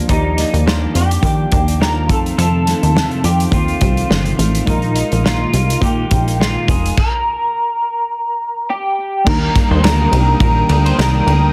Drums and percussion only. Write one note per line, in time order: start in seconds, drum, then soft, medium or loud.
0.09 kick medium
0.09 closed hi-hat medium
0.38 snare soft
0.38 closed hi-hat medium
0.54 closed hi-hat soft
0.68 snare loud
0.95 closed hi-hat medium
1.11 closed hi-hat medium
1.23 kick medium
1.23 closed hi-hat medium
1.52 kick medium
1.52 closed hi-hat medium
1.68 closed hi-hat medium
1.82 snare medium
2.09 kick medium
2.09 closed hi-hat medium
2.26 closed hi-hat soft
2.39 closed hi-hat medium
2.67 snare soft
2.67 closed hi-hat medium
2.83 closed hi-hat soft
2.97 snare loud
3.11 closed hi-hat soft
3.24 closed hi-hat medium
3.40 closed hi-hat medium
3.52 kick medium
3.52 closed hi-hat medium
3.68 closed hi-hat soft
3.81 kick medium
3.81 closed hi-hat medium
3.97 closed hi-hat soft
4.11 snare medium
4.26 closed hi-hat soft
4.39 closed hi-hat medium
4.55 closed hi-hat soft
4.67 kick loud
4.67 closed hi-hat medium
4.82 closed hi-hat soft
4.96 closed hi-hat medium
5.12 closed hi-hat soft
5.26 snare loud
5.54 closed hi-hat medium
5.70 closed hi-hat medium
5.82 kick medium
5.82 closed hi-hat medium
6.11 kick medium
6.11 closed hi-hat medium
6.28 closed hi-hat medium
6.41 snare medium
6.68 kick medium
6.68 closed hi-hat medium
6.86 closed hi-hat soft
6.98 kick loud
6.98 crash medium
9.27 kick loud
9.27 crash medium
9.56 kick medium
9.56 snare soft
9.56 ride medium
9.84 snare loud
9.84 ride loud
10.13 ride medium
10.40 kick medium
10.40 ride medium
10.69 ride medium
10.86 ride soft
10.99 snare loud
10.99 ride medium
11.28 ride medium